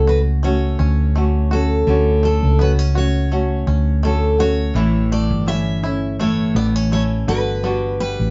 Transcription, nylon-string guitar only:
0.00 0.44 A3 medium
0.00 0.44 C#4 medium
0.00 0.44 F#4 medium
0.44 1.16 A3 medium
0.44 1.17 C#4 medium
0.44 1.16 F#4 medium
1.15 1.51 D3 medium
1.15 1.52 A3 medium
1.15 1.52 C#4 medium
1.15 1.50 F#4 medium
1.51 1.87 A3 soft
1.51 1.88 C#4 soft
1.51 1.87 F#4 medium
1.87 2.59 D3 medium
1.87 2.59 A3 medium
1.87 2.60 C#4 medium
1.87 2.60 F#4 medium
2.60 2.96 A3 medium
2.60 2.95 C#4 medium
2.60 2.93 F#4 medium
2.94 3.30 A3 soft
2.94 3.31 C#4 soft
2.94 3.31 F#4 medium
3.31 4.04 A3 medium
3.31 4.04 C#4 medium
3.31 4.04 F#4 medium
4.03 4.39 D3 medium
4.03 4.40 A3 medium
4.03 4.39 C#4 medium
4.03 4.37 F#4 medium
4.38 4.74 A3 soft
4.38 4.76 C#4 soft
4.38 4.75 F#4 medium
4.74 5.47 A2 medium
4.74 5.45 E3 medium
4.74 5.46 A3 medium
4.74 5.48 E4 medium
5.46 5.83 E3 medium
5.46 5.83 A3 medium
5.46 5.83 C#4 medium
5.46 5.82 E4 medium
5.83 6.19 A3 soft
5.83 6.20 C#4 soft
5.83 6.19 E4 medium
6.19 6.92 A2 medium
6.19 6.90 E3 medium
6.19 6.91 A3 medium
6.19 6.93 E4 medium
6.91 7.27 E3 medium
6.91 7.28 A3 medium
6.91 7.28 C#4 medium
6.91 7.28 E4 medium
7.28 7.63 B3 soft
7.28 7.64 D4 medium
7.28 7.64 F#4 medium
7.63 8.30 G3 medium
7.63 8.30 B3 medium
7.63 8.30 D4 medium
7.63 8.30 F#4 medium

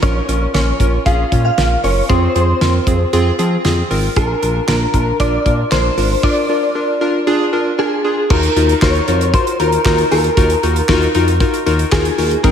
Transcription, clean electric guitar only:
0.03 0.51 C#5 medium
0.54 1.05 C#5 medium
1.06 1.44 F5 loud
1.45 1.81 F5 loud
1.84 2.09 C#5 medium
2.09 2.33 C5 medium
2.35 3.35 C5 medium
4.17 4.67 A#4 medium
4.69 5.17 A#4 medium
5.20 5.71 D5 loud
5.72 6.23 C5 loud
6.23 8.00 D5 loud
7.79 8.32 G#4 medium
8.31 8.82 A#4 loud
8.82 9.33 C#5 loud
9.34 9.59 C5 loud
9.60 10.08 A#4 loud
10.11 11.63 A#4 medium
11.92 12.46 G#4 medium
12.43 12.52 A#4 loud

